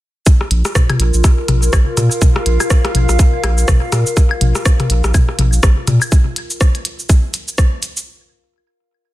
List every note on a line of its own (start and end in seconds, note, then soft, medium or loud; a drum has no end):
0.26 6.12 F4 medium
0.26 kick loud
0.26 cabasa medium
0.37 6.12 A#4 medium
0.37 cross-stick soft
0.51 0.63 A#1 loud
0.51 closed hi-hat medium
0.65 cross-stick medium
0.65 cabasa soft
0.75 kick loud
0.75 cross-stick loud
0.75 high tom medium
0.75 cabasa medium
0.90 cross-stick soft
0.90 closed hi-hat soft
0.90 mid tom medium
0.90 high woodblock medium
1.00 1.12 A#1 medium
1.00 closed hi-hat medium
1.14 1.22 A#1 medium
1.14 cabasa soft
1.24 kick loud
1.24 cross-stick medium
1.24 cabasa medium
1.48 1.70 A#1 medium
1.48 cross-stick soft
1.48 closed hi-hat medium
1.48 mid tom medium
1.48 high tom medium
1.59 6.12 F5 medium
1.59 cabasa soft
1.73 1.85 A#1 medium
1.73 kick loud
1.73 cross-stick medium
1.73 cross-stick loud
1.73 cabasa medium
1.73 high woodblock medium
1.97 2.09 A#2 medium
1.97 cross-stick soft
1.97 closed hi-hat medium
1.97 mid tom medium
1.97 cabasa soft
2.11 cabasa medium
2.22 kick loud
2.22 high tom medium
2.22 cabasa medium
2.36 cross-stick medium
2.46 2.58 A#1 loud
2.46 closed hi-hat medium
2.60 cross-stick soft
2.60 cabasa soft
2.60 high woodblock medium
2.70 kick loud
2.70 cross-stick loud
2.70 cabasa medium
2.85 cross-stick medium
2.85 closed hi-hat soft
2.95 3.07 A#1 loud
2.95 closed hi-hat medium
2.95 high tom medium
3.09 3.18 A#1 medium
3.09 cross-stick soft
3.09 cabasa soft
3.19 kick loud
3.19 cabasa medium
3.44 3.65 A#1 medium
3.44 cross-stick medium
3.44 closed hi-hat loud
3.44 high woodblock medium
3.58 cabasa soft
3.68 3.80 A#1 medium
3.68 kick loud
3.68 cross-stick loud
3.68 cross-stick soft
3.68 high tom medium
3.68 cabasa medium
3.92 4.04 A#2 medium
3.92 cross-stick medium
3.92 closed hi-hat medium
3.92 cabasa soft
4.07 cabasa soft
4.17 kick loud
4.17 cross-stick soft
4.17 cabasa medium
4.31 high woodblock medium
4.41 4.53 A#1 loud
4.41 closed hi-hat medium
4.41 high tom medium
4.55 cross-stick medium
4.55 cabasa soft
4.65 kick loud
4.65 cross-stick loud
4.65 cabasa medium
4.80 cross-stick soft
4.80 closed hi-hat soft
4.80 mid tom medium
4.90 5.02 A#1 loud
4.90 closed hi-hat loud
5.04 5.13 A#1 medium
5.04 cross-stick medium
5.04 cabasa soft
5.14 kick loud
5.14 high tom medium
5.14 cabasa medium
5.14 high woodblock medium
5.29 cross-stick soft
5.39 5.60 A#1 medium
5.39 closed hi-hat loud
5.39 mid tom medium
5.53 cabasa soft
5.63 5.75 A#1 medium
5.63 kick loud
5.63 cross-stick loud
5.63 cross-stick medium
5.63 cabasa medium
5.87 5.99 A#2 medium
5.87 cross-stick soft
5.87 closed hi-hat medium
5.87 mid tom medium
5.87 high tom medium
5.87 cabasa soft
6.02 cabasa soft
6.02 high woodblock medium
6.12 kick loud
6.12 cabasa medium
6.36 closed hi-hat loud
6.50 cabasa soft
6.61 kick loud
6.61 cross-stick medium
6.61 cabasa medium
6.75 closed hi-hat soft
6.85 closed hi-hat loud
6.99 cabasa soft
7.09 kick loud
7.09 cabasa medium
7.34 closed hi-hat loud
7.34 cabasa soft
7.48 cabasa soft
7.58 kick loud
7.58 cross-stick medium
7.58 cabasa medium
7.83 closed hi-hat medium
7.83 cabasa soft
7.97 cabasa soft